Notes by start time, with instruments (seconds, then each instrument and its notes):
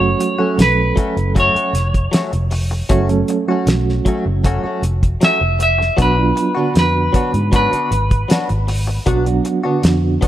Already playing: fingered electric bass F#1, clean electric guitar C#5
0.00 reed electric piano F#3 A3 C#4 F#4, muted clean electric guitar stroke
0.19 muted clean electric guitar stroke, closed hi-hat
0.39 reed electric piano F#3 A3 C#4 A4, clean electric guitar A3 C#4 F#4
0.58 fingered electric bass B1, muted clean electric guitar stroke, snare, closed hi-hat
0.62 clean electric guitar B4
0.96 clean electric guitar F#3 A3 C#4 F#4, kick, closed hi-hat
1.16 fingered electric bass F#1, muted clean electric guitar stroke, closed hi-hat
1.35 clean electric guitar F#3 A3 C#4 F#4, kick, closed hi-hat
1.40 clean electric guitar C#5
1.54 clean electric guitar A3 C#4 F#4, muted fingered electric bass stroke, closed hi-hat
1.73 fingered electric bass F1, muted clean electric guitar stroke, snare, closed hi-hat
1.94 kick, closed hi-hat
2.12 clean electric guitar F#3 A3 C#4 F#4, snare, closed hi-hat
2.32 fingered electric bass F1, muted clean electric guitar stroke, closed hi-hat
2.51 muted clean electric guitar stroke, open hi-hat
2.71 muted clean electric guitar stroke
2.89 fingered electric bass F#1, clean electric guitar F#3 A3 C#4 F#4, reed electric piano F#3 A3 C#4 F#4, kick, closed hi-hat
3.09 reed electric piano F#3 A3 C#4 A4, muted clean electric guitar stroke, closed hi-hat
3.28 muted clean electric guitar stroke, closed hi-hat
3.48 reed electric piano F#3 A3 C#4 F#4, clean electric guitar C#4 F#4
3.52 clean electric guitar A3
3.67 fingered electric bass B1, muted clean electric guitar stroke, snare, closed hi-hat
3.89 snare
4.05 clean electric guitar F#3 A3 C#4 F#4, kick, closed hi-hat
4.26 fingered electric bass F#1, muted clean electric guitar stroke
4.44 clean electric guitar F#3 A3 C#4 F#4, kick, closed hi-hat
4.64 clean electric guitar A3 C#4 F#4, muted fingered electric bass stroke
4.82 fingered electric bass F1, muted clean electric guitar stroke, closed hi-hat
5.03 kick, closed hi-hat
5.21 clean electric guitar F#3 A3 C#4 F#4 E5, snare, closed hi-hat
5.41 fingered electric bass F1, muted clean electric guitar stroke
5.59 clean electric guitar E5, muted clean electric guitar stroke, closed hi-hat
5.78 muted clean electric guitar stroke, snare
5.97 fingered electric bass B1, clean electric guitar F#3 B3 D4 F#4, reed electric piano F#3 B3 D4 F#4, kick, closed hi-hat
6.02 clean electric guitar B4
6.17 reed electric piano F#3 B3 D4 F4, muted clean electric guitar stroke
6.35 muted clean electric guitar stroke, closed hi-hat
6.55 reed electric piano D3 B3 D4 F#4, clean electric guitar B3 D4 F#4
6.74 fingered electric bass F2, muted clean electric guitar stroke, snare, closed hi-hat
6.79 clean electric guitar B4
7.13 clean electric guitar F#3 B3 D4 F#4, kick, closed hi-hat
7.33 fingered electric bass G#2, muted clean electric guitar stroke, closed hi-hat
7.52 clean electric guitar F#3 B3 D4 F#4 B4, kick, closed hi-hat
7.71 clean electric guitar B3 D4 F#4, muted fingered electric bass stroke, closed hi-hat
7.91 fingered electric bass G#1, muted clean electric guitar stroke, closed hi-hat
8.11 kick, closed hi-hat
8.28 clean electric guitar F#3 B3 D4 F#4, snare, closed hi-hat
8.49 fingered electric bass G#1, muted clean electric guitar stroke, closed hi-hat
8.67 muted clean electric guitar stroke, open hi-hat
8.87 muted clean electric guitar stroke
9.06 fingered electric bass B1, clean electric guitar F#3 B3 D4 F#4, reed electric piano F#3 B3 D4 F#4, kick, closed hi-hat
9.26 reed electric piano F#3 B3 D4 F#4, muted clean electric guitar stroke, closed hi-hat
9.45 muted clean electric guitar stroke, closed hi-hat
9.64 reed electric piano D3 B3 D4 F#4, clean electric guitar B3 D4 F#4
9.83 fingered electric bass F2, muted clean electric guitar stroke, snare, closed hi-hat
10.21 clean electric guitar F#3 B3 D4 F#4, kick, closed hi-hat